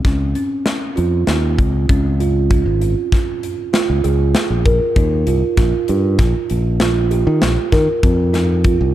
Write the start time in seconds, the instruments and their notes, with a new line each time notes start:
0.05 fingered electric bass C#2, kalimba C#4, kick, snare, closed hi-hat
0.35 kalimba C#4, closed hi-hat
0.66 snare, closed hi-hat
0.96 fingered electric bass F2, kalimba F4, closed hi-hat
1.27 fingered electric bass D#2, snare, closed hi-hat
1.58 fingered electric bass C#2, kalimba C4, kick, closed hi-hat
1.89 fingered electric bass C#2, kalimba C#4, kick, closed hi-hat
2.20 kalimba F4, closed hi-hat
2.50 kalimba F4, kick, closed hi-hat
2.66 fingered electric bass G#1
2.81 closed hi-hat
3.12 kick, snare, closed hi-hat
3.43 closed hi-hat
3.73 kalimba F4, snare, closed hi-hat
3.90 fingered electric bass C#2
4.04 fingered electric bass C#2, kalimba G#4, closed hi-hat
4.35 snare, closed hi-hat
4.50 fingered electric bass A#1
4.66 kalimba A#4, kick, closed hi-hat
4.96 fingered electric bass D#2, kalimba D#4, kick, closed hi-hat
5.27 fingered electric bass C2, kalimba F4, closed hi-hat
5.57 fingered electric bass A#1, kalimba F4, kick, snare, closed hi-hat
5.88 fingered electric bass G2, closed hi-hat
6.19 fingered electric bass A#1, kick, snare, closed hi-hat
6.50 fingered electric bass A#1, closed hi-hat
6.80 kalimba F4, snare, closed hi-hat
7.11 kalimba G4, closed hi-hat
7.27 fingered electric bass D#3
7.42 fingered electric bass A#1, snare, closed hi-hat
7.72 fingered electric bass D#3, kalimba A#4, kick, snare, closed hi-hat
8.03 fingered electric bass F2, kalimba C4, kick, closed hi-hat
8.33 kalimba D#4, snare, closed hi-hat
8.64 kalimba F4, kick, closed hi-hat
8.81 fingered electric bass C2